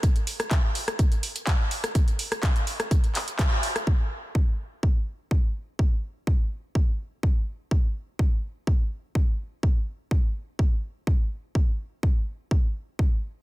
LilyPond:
\new DrumStaff \with { instrumentName = "Drums" } \drummode { \time 4/4 \tempo 4 = 125 <hh bd>16 hh16 hho16 <hh ss>16 <hc hh bd>8 hho16 <hh ss>16 <hh bd>16 hh16 hho16 hh16 <hc hh bd>8 hho16 <hh ss>16 | <hh bd>16 hh16 hho16 <hh ss>16 <hc hh bd>16 hh16 hho16 <hh ss>16 <hh bd>16 hh16 <hc hho>16 hh16 <hc hh bd>8 hho16 <hh ss>16 | bd4 bd4 bd4 bd4 | bd4 bd4 bd4 bd4 |
bd4 bd4 bd4 bd4 | bd4 bd4 bd4 bd4 | bd4 bd4 bd4 bd4 | }